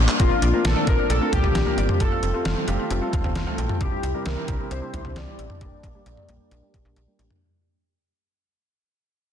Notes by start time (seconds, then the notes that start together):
Already playing: G3 A#3 D4
0.08 clap
0.20 A#1 A#3 C4 D4 F4 A#4, kick, closed hi-hat
0.31 D4
0.42 A#1 D5, closed hi-hat
0.53 A#3 C4 D4 F4 A#4
0.65 A#1 D4 A4, snare, closed hi-hat
0.76 D5
0.87 A#1 A#3 C4 D4 F4 A#4, kick, closed hi-hat
0.99 D4
1.10 A#1 A4 D5, closed hi-hat
1.21 A#3 C4 D4 F4 A#4
1.32 A#1 D4 G4, closed hi-hat, mid tom
1.44 A#1 D5, mid tom
1.55 A#1 C4, snare, closed hi-hat
1.66 A#3 D4 F4 A#4
1.78 G1 D5, closed hi-hat
1.89 C4, mid tom
2.00 F1 G3 A3 C4 F4 A4, kick, closed hi-hat
2.12 F5
2.23 F1 C4, closed hi-hat
2.34 A3 C4 F4 A4
2.45 F1 F5, snare, closed hi-hat
2.57 C4
2.68 F1 A3 C4 F4 G4, closed hi-hat
2.79 F5
2.91 F1 C4, closed hi-hat
3.02 A3 C4 F4 A4
3.13 F1 F5, kick, closed hi-hat, mid tom
3.24 F1 C4, mid tom
3.35 F1 F4 F5, snare, closed hi-hat
3.47 A3 C4 F4 A4 F5
3.58 A#1 C4 G5, closed hi-hat
3.69 F4, mid tom
3.81 C2 C3 G3 C4 D4 E4 G4, kick, closed hi-hat
3.92 E4
4.03 C2 E5, closed hi-hat
4.14 G3 C4 D4 E4 A#4
4.26 C2 E4 A#4, snare, closed hi-hat
4.37 E5
4.48 C2 G3 C4 D4 E4 G4, kick, closed hi-hat
4.60 E4
4.71 C2 C5 E5, closed hi-hat
4.82 G3 C4 D4 E4 G4
4.93 C2 E4 C5, closed hi-hat, mid tom
5.05 C2 E5, mid tom
5.16 C2 D4 D5, snare, closed hi-hat
5.27 G3 C4 E4 G4
5.39 A1 E5, closed hi-hat
5.50 D4, mid tom
5.61 A#1 G3 A#3 D4 G4 D5, kick, closed hi-hat
5.72 G6
5.83 A#1 D4, kick, closed hi-hat
5.95 G3 A#3 D4 G4
6.06 A#1 G6, closed hi-hat
6.17 D4, mid tom
6.29 A#1 G3 A#3 D4 G4, closed hi-hat
6.40 G6
6.51 A#1 D4, closed hi-hat
6.63 G3 A#3 D4 G4
6.74 A#1, kick, closed hi-hat
6.85 A#1 D4
6.96 A#1 G4, closed hi-hat
7.08 G3 A#3 D4 G4 G6
7.19 A1 D4, closed hi-hat
7.30 G4, mid tom